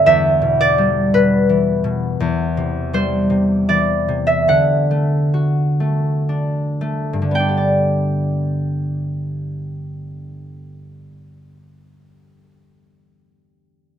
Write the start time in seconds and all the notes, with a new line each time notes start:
Already playing: G2 D3 B3 D4 B4 D5
0.06 E2 E5
0.42 B2
0.61 D5
0.78 G3
1.14 B2 B4
1.49 E3
1.84 B2
2.20 E2
2.57 C3
2.93 G3 C5
3.30 C3
3.69 E3 D5
4.08 C3
4.27 E5
4.48 D3 F#5
4.91 A3
5.34 F#4
5.80 A3
6.29 D4
6.81 A3
7.13 G2
7.22 D3
7.31 B3
7.35 G5
7.40 D4
7.49 G4
7.57 D5